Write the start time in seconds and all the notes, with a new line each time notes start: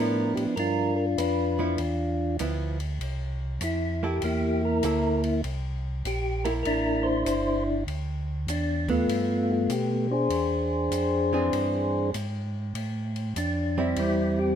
Already playing: A2 F3 B3 D4 A#4
0.00 B3 E4
0.35 A2 G4, ride
0.56 G2 D4 F4 A#4, ride
0.96 A#4
1.18 F2 D4 F4 B4, hi-hat pedal, ride
1.59 F3 B3 E4
1.78 E2, ride
2.39 D2 F3 B3 E4, hi-hat pedal, ride
2.80 ride
2.99 C2, ride
3.61 F2 E4, hi-hat pedal, ride
4.03 A#3 E4 G4 A4
4.22 E2 A#3 E4 G4, ride
4.65 A#4
4.83 D2 A#3 E4 A4 A#4, hi-hat pedal, ride
5.24 ride
5.44 C2, ride
6.04 A#1 G4, hi-hat pedal, ride
6.44 A#3 E4 A#4, ride
6.63 A1 D4 E4 A#4, ride
7.03 C5
7.25 G1 C5, hi-hat pedal, ride
7.87 D2, ride
8.47 E2 D4, hi-hat pedal, ride
8.88 A3 B3 F4, kick, ride
9.08 G2, ride
9.52 F4
9.69 B2 G4, hi-hat pedal, ride
10.11 D4 G#4 C5
10.30 E2, ride
10.91 F2, hi-hat pedal, ride
11.33 E3 C4 D4 G#4
11.53 G2, ride
12.14 G#2, hi-hat pedal, ride
12.74 A2, ride
13.16 ride
13.36 F2 D4, hi-hat pedal, ride
13.78 G3 C4 E4
13.96 E2 G3 C4 E4, ride
14.39 G4